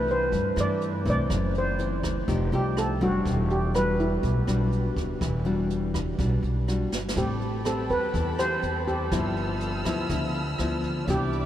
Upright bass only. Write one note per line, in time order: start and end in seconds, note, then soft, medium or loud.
0.00 0.28 C2 medium
0.33 0.55 G2 medium
0.57 1.07 G2 medium
1.06 1.28 C2 medium
1.30 2.24 F#1 medium
2.28 2.51 F1 medium
2.52 3.03 C2 medium
3.01 3.24 F1 medium
3.26 4.19 E1 medium
4.23 4.46 B1 medium
4.47 4.97 B1 medium
4.97 5.19 E1 medium
5.21 6.15 E1 medium
6.19 6.41 B1 loud
6.43 6.91 B1 medium
6.91 7.14 G1 medium
7.16 7.86 A1 medium
7.90 8.12 E2 medium
8.14 8.60 E2 medium
8.62 9.08 E2 medium
9.12 9.81 G1 medium
9.85 10.08 D2 medium
10.10 10.55 D2 medium
10.59 11.04 D2 medium
11.08 11.46 C2 medium